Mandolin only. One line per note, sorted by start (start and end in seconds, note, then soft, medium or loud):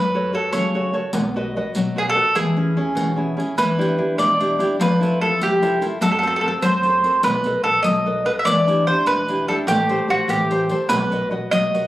0.00 0.31 B4 medium
0.35 0.52 A4 medium
0.52 0.95 C#5 medium
1.98 2.02 G#4 medium
2.09 2.35 A4 medium
2.36 3.34 G#4 medium
3.58 4.18 B4 medium
4.18 4.76 D5 medium
4.82 5.19 B4 medium
5.21 5.40 A4 medium
5.43 5.85 G4 medium
6.02 6.09 A4 medium
6.11 6.17 A4 medium
6.19 6.25 A4 medium
6.27 6.33 A4 medium
6.36 6.40 A4 medium
6.41 6.47 A4 medium
6.48 6.54 A4 medium
6.62 7.24 C5 medium
7.24 7.62 B4 medium
7.64 7.82 A4 medium
7.83 8.25 D#5 medium
8.26 8.31 B4 medium
8.39 8.46 E5 medium
8.45 8.84 D5 loud
8.87 9.07 C5 medium
9.07 9.48 B4 medium
9.48 9.54 A4 medium
9.68 10.07 G4 medium
10.10 10.28 F#4 medium
10.30 10.73 G4 medium
10.89 11.28 B4 medium
11.51 11.87 D#5 medium